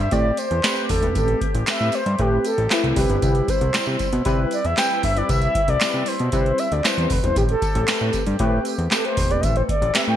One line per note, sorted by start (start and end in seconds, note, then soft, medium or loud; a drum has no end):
0.00 10.16 C3 medium
0.00 10.16 C4 medium
0.00 2.93 G4 medium
0.00 0.14 E5 loud
0.11 0.32 A2 loud
0.11 0.45 A3 medium
0.11 0.45 C4 medium
0.11 0.45 G4 medium
0.11 0.46 D5 medium
0.11 0.40 D5 medium
0.11 kick medium
0.11 closed hi-hat medium
0.11 tambourine soft
0.37 0.90 C5 loud
0.37 closed hi-hat medium
0.37 tambourine soft
0.51 0.61 E2 medium
0.51 closed hi-hat soft
0.63 0.89 A3 medium
0.63 0.89 C4 medium
0.63 0.89 G4 medium
0.63 0.89 B4 medium
0.63 snare loud
0.63 clap medium
0.63 closed hi-hat medium
0.63 tambourine medium
0.77 closed hi-hat soft
0.89 1.17 E1 medium
0.89 1.14 A4 medium
0.89 kick medium
0.89 open hi-hat medium
0.89 tambourine soft
1.02 1.44 A3 medium
1.02 1.44 C4 medium
1.02 1.44 G4 medium
1.02 1.45 B4 medium
1.02 closed hi-hat medium
1.15 1.35 A1 loud
1.15 1.40 A4 medium
1.15 kick loud
1.15 closed hi-hat medium
1.15 tambourine soft
1.28 closed hi-hat soft
1.41 kick medium
1.41 closed hi-hat medium
1.54 1.64 A1 loud
1.54 closed hi-hat medium
1.67 2.01 A3 medium
1.67 2.01 C4 medium
1.67 2.01 G4 medium
1.67 2.01 B4 medium
1.67 1.96 E5 loud
1.67 snare loud
1.67 clap loud
1.67 closed hi-hat medium
1.67 tambourine medium
1.80 1.90 A2 medium
1.92 2.22 C5 loud
1.92 closed hi-hat medium
1.92 tambourine medium
2.06 2.16 G2 loud
2.06 closed hi-hat medium
2.19 2.39 A2 loud
2.19 2.52 A3 medium
2.19 2.52 C4 medium
2.19 2.53 G4 medium
2.19 2.46 G4 medium
2.19 2.53 B4 medium
2.19 kick medium
2.19 closed hi-hat medium
2.45 2.74 A4 loud
2.45 closed hi-hat medium
2.45 tambourine soft
2.58 2.68 A1 medium
2.58 closed hi-hat medium
2.70 2.96 A3 medium
2.70 2.95 C4 medium
2.70 3.00 E4 medium
2.70 2.96 G4 medium
2.70 2.95 B4 medium
2.70 snare loud
2.70 clap medium
2.70 closed hi-hat medium
2.70 tambourine medium
2.84 2.93 C2 medium
2.84 closed hi-hat soft
2.96 3.06 C2 loud
2.96 3.58 G3 medium
2.96 3.58 C4 medium
2.96 3.59 E4 medium
2.96 7.19 E4 medium
2.96 3.51 G4 loud
2.96 3.59 B4 medium
2.96 kick medium
2.96 open hi-hat medium
2.96 tambourine soft
3.10 3.19 G1 loud
3.10 closed hi-hat medium
3.22 3.42 C2 loud
3.22 kick loud
3.22 closed hi-hat medium
3.22 tambourine soft
3.35 closed hi-hat soft
3.48 4.26 C5 medium
3.48 kick medium
3.48 closed hi-hat medium
3.48 tambourine soft
3.61 3.71 C2 medium
3.61 closed hi-hat medium
3.73 3.79 C3 soft
3.73 4.07 G3 medium
3.73 4.07 C4 medium
3.73 4.07 E4 medium
3.73 4.08 C5 medium
3.73 snare loud
3.73 clap loud
3.73 closed hi-hat medium
3.73 tambourine medium
3.87 3.97 C3 medium
3.99 kick medium
3.99 closed hi-hat medium
3.99 tambourine medium
4.13 4.22 B2 medium
4.13 closed hi-hat medium
4.25 4.46 C3 loud
4.25 4.59 G3 loud
4.25 4.59 C4 medium
4.25 4.59 E4 medium
4.25 4.59 B4 loud
4.25 kick loud
4.25 closed hi-hat medium
4.25 tambourine soft
4.51 4.67 D5 loud
4.51 closed hi-hat medium
4.51 tambourine medium
4.65 4.74 E2 medium
4.65 4.78 E5 loud
4.65 closed hi-hat medium
4.77 5.02 G3 medium
4.77 5.02 C4 medium
4.77 5.03 E4 medium
4.77 5.03 B4 medium
4.77 5.02 G5 loud
4.77 snare loud
4.77 clap medium
4.77 closed hi-hat medium
4.77 tambourine loud
4.91 closed hi-hat soft
5.03 5.23 G1 medium
5.03 5.19 E5 loud
5.03 kick medium
5.03 open hi-hat medium
5.03 tambourine soft
5.16 5.58 G3 medium
5.16 5.58 C4 medium
5.16 5.58 E4 medium
5.16 5.58 B4 medium
5.16 5.30 D5 loud
5.16 closed hi-hat medium
5.29 5.49 C2 loud
5.29 5.71 E5 loud
5.29 kick loud
5.29 closed hi-hat medium
5.29 tambourine soft
5.42 closed hi-hat soft
5.55 kick medium
5.55 closed hi-hat medium
5.68 5.78 C2 medium
5.68 6.09 D5 loud
5.68 closed hi-hat medium
5.81 5.86 C3 soft
5.81 6.14 G3 medium
5.81 6.15 C4 medium
5.81 6.15 E4 medium
5.81 6.15 B4 medium
5.81 snare loud
5.81 clap loud
5.81 closed hi-hat medium
5.81 tambourine medium
5.94 6.04 C3 loud
6.06 6.33 C5 loud
6.06 open hi-hat medium
6.06 tambourine medium
6.19 6.30 B2 loud
6.19 closed hi-hat medium
6.32 6.52 C3 loud
6.32 6.66 G3 medium
6.32 6.66 C4 medium
6.32 6.66 E4 medium
6.32 6.66 B4 medium
6.32 6.61 C5 medium
6.32 kick loud
6.32 closed hi-hat medium
6.32 tambourine soft
6.46 closed hi-hat soft
6.58 6.74 E5 medium
6.58 closed hi-hat medium
6.58 tambourine medium
6.72 6.81 D2 medium
6.72 6.87 D5 medium
6.72 closed hi-hat medium
6.84 7.09 G3 medium
6.84 7.10 C4 medium
6.84 7.10 E4 medium
6.84 7.10 B4 medium
6.84 7.13 C5 medium
6.84 snare loud
6.84 clap medium
6.84 closed hi-hat medium
6.84 tambourine loud
6.98 7.07 E2 loud
6.98 closed hi-hat soft
7.10 7.20 F1 medium
7.10 7.24 B4 medium
7.10 kick loud
7.10 open hi-hat medium
7.10 tambourine soft
7.23 7.33 E1 loud
7.23 7.36 G3 medium
7.23 7.36 C4 medium
7.23 7.36 E4 medium
7.23 7.36 B4 medium
7.23 7.36 C5 medium
7.23 closed hi-hat medium
7.36 7.56 A1 loud
7.36 9.41 G4 medium
7.36 7.43 G4 medium
7.36 kick loud
7.36 closed hi-hat medium
7.36 tambourine soft
7.49 8.24 A4 medium
7.49 closed hi-hat soft
7.62 kick medium
7.62 closed hi-hat medium
7.62 tambourine soft
7.75 7.85 A1 loud
7.75 closed hi-hat medium
7.88 8.21 A3 medium
7.88 8.21 C4 medium
7.88 8.22 G4 medium
7.88 8.22 B4 medium
7.88 snare loud
7.88 clap loud
7.88 closed hi-hat medium
7.88 tambourine medium
8.01 8.11 A2 loud
8.13 kick medium
8.13 closed hi-hat medium
8.13 tambourine medium
8.27 8.36 G2 loud
8.27 closed hi-hat medium
8.39 8.59 A2 loud
8.39 8.73 A3 medium
8.39 8.73 C4 medium
8.39 8.73 G4 medium
8.39 8.73 B4 loud
8.39 kick loud
8.39 closed hi-hat medium
8.65 closed hi-hat medium
8.65 tambourine medium
8.78 8.88 E2 medium
8.78 closed hi-hat soft
8.91 9.16 A3 medium
8.91 9.16 C4 medium
8.91 9.16 G4 medium
8.91 9.04 A4 medium
8.91 9.17 B4 medium
8.91 snare loud
8.91 clap medium
8.91 closed hi-hat medium
8.91 tambourine loud
9.05 9.33 C5 medium
9.05 closed hi-hat soft
9.17 9.45 E1 medium
9.17 kick medium
9.17 open hi-hat medium
9.17 tambourine soft
9.30 9.72 A3 medium
9.30 9.72 C4 medium
9.30 9.72 G4 medium
9.30 9.72 B4 medium
9.30 9.42 D5 medium
9.30 closed hi-hat medium
9.41 9.63 A1 loud
9.41 10.16 A4 medium
9.41 9.45 D#5 medium
9.41 9.56 E5 loud
9.41 kick loud
9.41 closed hi-hat medium
9.41 tambourine soft
9.56 9.63 C5 medium
9.56 closed hi-hat soft
9.69 9.94 D5 medium
9.69 kick medium
9.69 closed hi-hat medium
9.82 9.92 A1 loud
9.82 closed hi-hat medium
9.94 10.00 A2 soft
9.94 10.16 A3 medium
9.94 10.16 C4 medium
9.94 10.16 G4 medium
9.94 10.16 B4 medium
9.94 10.01 E5 loud
9.94 snare loud
9.94 clap loud
9.94 closed hi-hat medium
9.94 tambourine medium
10.08 10.16 A2 medium
10.08 10.16 G5 loud